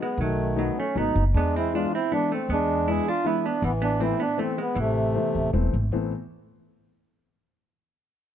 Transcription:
0.01 0.19 G#3 medium
0.01 0.20 B3 medium
0.18 0.68 B1 medium
0.18 0.73 D#3 medium
0.18 0.55 F#3 medium
0.18 0.59 A3 medium
0.56 0.76 F#3 medium
0.56 0.77 A3 medium
0.56 0.77 B3 medium
0.56 0.78 B3 medium
0.56 0.77 D#4 medium
0.78 0.96 A3 medium
0.78 0.97 C#4 medium
0.95 1.14 G#1 medium
0.95 1.15 F#3 medium
0.95 1.15 A3 medium
0.95 1.15 B3 soft
0.95 1.24 B3 medium
0.95 1.15 D#4 medium
0.95 1.24 D#4 medium
1.15 1.32 F#1 medium
1.34 1.84 E2 medium
1.34 1.88 G#3 medium
1.34 1.54 B3 medium
1.34 1.55 D4 medium
1.56 1.73 C4 medium
1.56 1.74 E4 medium
1.73 1.93 E3 medium
1.73 1.93 G#3 medium
1.73 1.93 B3 medium
1.73 1.93 D4 medium
1.73 1.92 D4 medium
1.73 1.92 F4 medium
1.94 2.11 C4 medium
1.94 2.12 E4 medium
2.11 2.31 E3 medium
2.11 2.31 G#3 soft
2.11 2.30 B3 medium
2.11 2.31 B3 medium
2.11 2.31 D4 medium
2.11 2.32 D4 medium
2.32 2.49 A3 medium
2.32 2.51 C4 medium
2.49 2.98 E2 medium
2.49 3.03 G#3 medium
2.49 2.85 B3 medium
2.53 2.90 D4 loud
2.87 3.07 E3 medium
2.87 3.07 G#3 medium
2.87 3.07 B3 medium
2.87 3.07 D4 medium
2.87 3.06 E4 medium
2.87 3.08 G#4 medium
3.08 3.25 D4 medium
3.08 3.26 F4 loud
3.24 3.44 E3 medium
3.24 3.44 G#3 medium
3.24 3.44 B3 medium
3.24 3.44 D4 medium
3.24 3.46 E4 loud
3.44 3.62 B3 medium
3.44 3.63 D4 medium
3.62 4.11 A1 medium
3.62 4.15 E3 medium
3.62 3.69 E3 medium
3.62 3.72 B3 loud
3.82 3.99 B3 medium
3.82 4.01 D4 medium
4.00 4.20 E3 medium
4.00 4.20 A3 medium
4.00 4.20 B3 medium
4.00 4.20 C4 medium
4.00 4.18 C4 medium
4.00 4.22 E4 medium
4.20 4.37 B3 medium
4.20 4.39 D4 medium
4.37 4.58 E3 medium
4.37 4.57 A3 medium
4.37 4.57 B3 medium
4.37 4.58 C4 medium
4.42 4.60 C4 medium
4.58 4.75 G#3 medium
4.58 4.79 B3 medium
4.75 5.14 A1 medium
4.75 5.50 C3 medium
4.75 5.49 E3 medium
4.75 5.51 A3 loud
5.15 5.35 E3 medium
5.15 5.35 A3 medium
5.15 5.35 B3 medium
5.15 5.35 C4 medium
5.35 5.52 D1 medium
5.53 5.71 E1 medium
5.53 5.73 E3 medium
5.53 5.73 A3 medium
5.53 5.73 B3 medium
5.53 5.73 C4 medium
5.73 5.90 G#1 medium
5.92 6.10 A1 medium
5.92 6.11 E3 medium
5.92 6.11 A3 medium
5.92 6.11 B3 medium
5.92 6.11 C4 medium

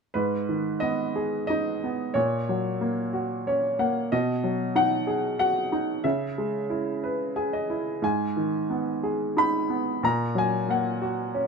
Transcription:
0.14 2.12 G#2 soft
0.14 0.78 B4 medium
0.49 1.79 D#3 soft
0.80 1.82 B3 soft
0.80 1.46 D#5 medium
1.16 2.13 G#4 soft
1.47 2.14 D#4 soft
1.47 2.17 D#5 medium
1.84 2.15 B3 soft
2.14 4.08 A#2 soft
2.14 3.46 C#5 medium
2.49 3.76 F#3 soft
2.81 3.78 A#3 soft
3.13 4.09 F#4 soft
3.47 4.10 C#4 soft
3.47 3.78 C#5 soft
3.79 4.11 A#3 soft
3.79 4.10 F#5 soft
4.12 6.01 B2 medium
4.12 4.72 D#5 medium
4.44 5.68 F#3 soft
4.75 5.71 D#4 soft
4.75 5.38 F#5 medium
5.07 6.01 G#4 soft
5.39 6.03 F#4 soft
5.39 6.06 F#5 medium
5.72 6.04 D#4 soft
6.04 7.99 C#3 soft
6.04 7.65 E5 medium
6.38 7.66 G#3 soft
6.70 7.68 E4 soft
7.04 8.01 B4 soft
7.36 8.01 G#4 soft
7.36 7.51 G#5 soft
7.53 8.00 D#5 soft
7.70 8.03 E4 soft
8.02 9.99 G#2 soft
8.02 9.41 G#5 medium
8.37 9.66 D#3 soft
8.70 9.68 B3 soft
9.03 10.00 G#4 soft
9.37 10.01 D#4 soft
9.37 10.00 B5 medium
9.70 10.02 B3 soft
10.03 11.47 A#2 medium
10.03 10.37 A#5 medium
10.35 11.47 F#3 soft
10.35 10.71 G#5 medium
10.68 11.47 A#3 soft
10.68 11.47 F#5 medium
11.02 11.47 F#4 soft
11.34 11.47 C#4 soft

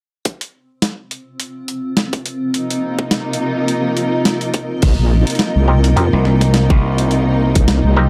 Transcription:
0.25 6.45 C4 medium
0.25 kick loud
0.25 closed hi-hat medium
0.41 closed hi-hat medium
0.82 snare loud
0.82 closed hi-hat medium
1.03 8.09 F4 medium
1.11 closed hi-hat medium
1.40 closed hi-hat medium
1.68 8.09 A#4 medium
1.68 closed hi-hat medium
1.97 snare loud
1.97 closed hi-hat medium
2.13 kick loud
2.13 closed hi-hat medium
2.26 closed hi-hat medium
2.32 8.09 D#5 medium
2.54 4.80 C3 medium
2.54 4.80 A#3 medium
2.54 4.80 D#4 medium
2.54 closed hi-hat medium
2.70 closed hi-hat medium
2.99 kick loud
3.11 snare loud
3.11 closed hi-hat medium
3.33 closed hi-hat medium
3.68 closed hi-hat medium
3.97 closed hi-hat medium
4.25 snare loud
4.25 closed hi-hat medium
4.41 closed hi-hat medium
4.54 kick loud
4.54 closed hi-hat medium
4.82 4.96 C2 medium
4.82 8.09 C3 medium
4.82 8.09 A#3 medium
4.82 8.09 D#4 medium
4.82 kick loud
4.82 closed hi-hat medium
4.82 crash medium
4.99 5.25 A#1 medium
5.27 closed hi-hat medium
5.30 closed hi-hat medium
5.35 closed hi-hat soft
5.39 snare loud
5.39 closed hi-hat medium
5.56 5.95 C2 loud
5.68 5.90 C4 medium
5.68 5.90 D#4 medium
5.68 5.90 G4 medium
5.68 5.90 A#4 medium
5.84 closed hi-hat medium
5.96 6.10 F2 medium
5.96 7.93 C4 medium
5.96 7.94 D#4 medium
5.96 7.94 G4 medium
5.96 7.93 A#4 medium
5.96 closed hi-hat medium
6.13 6.23 C2 medium
6.25 6.67 C2 medium
6.25 snare soft
6.41 snare medium
6.41 closed hi-hat medium
6.54 snare loud
6.54 closed hi-hat medium
6.70 7.53 C2 medium
6.70 kick loud
6.98 closed hi-hat medium
7.11 closed hi-hat medium
7.55 7.82 C2 medium
7.55 kick loud
7.55 closed hi-hat medium
7.68 snare loud
7.68 closed hi-hat medium
7.84 8.09 C2 medium
7.96 8.09 C4 medium
7.96 8.09 D#4 medium
7.96 8.09 G4 medium
7.96 8.09 A#4 loud

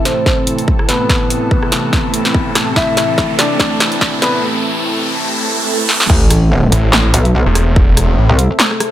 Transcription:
0.00 6.06 A2 medium
0.00 6.06 C3 medium
0.00 6.06 E3 medium
0.00 4.43 A3 medium
0.00 4.43 A4 medium
0.00 6.06 A4 medium
0.00 4.43 E5 loud
0.00 riser medium
0.05 0.81 C4 medium
0.05 0.81 C5 medium
0.05 3.19 A5 medium
0.05 snare medium
0.05 closed hi-hat medium
0.26 kick loud
0.26 snare medium
0.47 closed hi-hat medium
0.58 closed hi-hat soft
0.68 kick loud
0.79 cross-stick medium
0.89 2.69 B3 medium
0.89 2.69 B4 medium
0.89 snare medium
0.89 closed hi-hat medium
1.09 kick medium
1.09 snare medium
1.30 closed hi-hat medium
1.51 kick medium
1.63 cross-stick medium
1.72 snare medium
1.72 closed hi-hat medium
1.93 kick loud
1.93 snare medium
2.14 closed hi-hat medium
2.25 snare medium
2.25 closed hi-hat soft
2.35 kick loud
2.55 cross-stick medium
2.55 snare medium
2.55 closed hi-hat medium
2.76 3.31 E4 medium
2.76 3.31 E5 loud
2.76 kick loud
2.76 snare medium
2.97 snare medium
2.97 closed hi-hat medium
3.18 kick medium
3.18 snare medium
3.39 4.15 D4 medium
3.39 4.15 D5 medium
3.39 snare medium
3.39 closed hi-hat medium
3.60 kick loud
3.60 snare medium
3.80 snare medium
3.80 closed hi-hat medium
3.92 closed hi-hat soft
4.01 kick loud
4.01 snare medium
4.22 4.43 B3 medium
4.22 4.43 B4 medium
4.22 snare medium
4.22 closed hi-hat medium
5.26 swell medium
5.89 snare medium
6.00 snare medium
6.10 6.71 A1 medium
6.10 8.91 A3 medium
6.10 8.91 C4 medium
6.10 8.91 A4 medium
6.10 8.91 C5 medium
6.10 8.91 E5 medium
6.10 kick loud
6.10 crash loud
6.10 sub drop medium
6.30 8.91 A4 loud
6.30 cross-stick medium
6.30 closed hi-hat medium
6.72 7.12 A1 loud
6.72 closed hi-hat medium
6.82 8.91 E5 medium
6.93 snare loud
6.93 clap loud
7.14 7.44 B1 medium
7.14 closed hi-hat medium
7.25 closed hi-hat soft
7.46 7.86 E1 loud
7.55 cross-stick medium
7.55 closed hi-hat medium
7.76 kick loud
7.88 8.16 E1 loud
7.97 cross-stick medium
7.97 closed hi-hat medium
8.18 8.27 A1 loud
8.29 8.48 C2 loud
8.39 closed hi-hat medium
8.60 snare loud
8.60 clap loud
8.71 cross-stick medium
8.80 cross-stick medium
8.80 closed hi-hat medium

